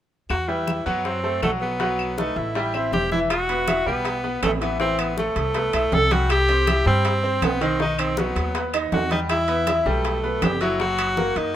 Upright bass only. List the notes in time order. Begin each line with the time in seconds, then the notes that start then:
0.30 E2
0.86 F#2
1.43 B1
2.36 A1
2.92 E1
3.86 B1
4.42 A1
5.36 C2
5.73 B1
5.92 C2
6.86 G2
7.42 B1
8.36 D#2
8.92 E2
9.86 B1
10.42 F#1
11.36 F#2